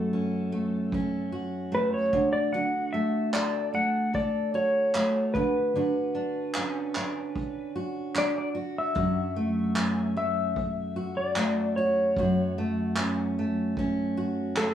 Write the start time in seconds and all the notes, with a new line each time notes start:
Already playing: F#2 A3 C#4 F#4 A4
0.13 C#4
0.52 A3
0.92 C#4, kick
1.32 F#4
1.72 A3 B4
1.94 C#5
2.13 D3, kick
2.33 D5
2.53 D3 F#4 F#5
2.93 A3 E5
3.33 A4 D5, clap
3.74 A3 F#5
4.14 A4 D5, kick
4.54 F#4 C#5
4.95 A3, clap
5.34 D3 B4, kick
5.76 D3 F#4
6.15 D4
6.55 C#4, clap
6.95 D4, clap
7.36 kick
7.76 F#4
8.15 D4 D5, clap
8.38 D5
8.55 F#4
8.78 E5
8.95 F#2 F#4, kick
9.36 A3
9.76 C#4, clap
10.17 A3 E5
10.56 kick
10.96 F#4
11.17 D5
11.36 A3, clap
11.76 F#4 C#5
12.16 F#2 F#4, kick
12.58 A3
12.96 C#4, clap
13.39 A3
13.77 C#4, kick
14.17 F#4
14.56 A3 A4, clap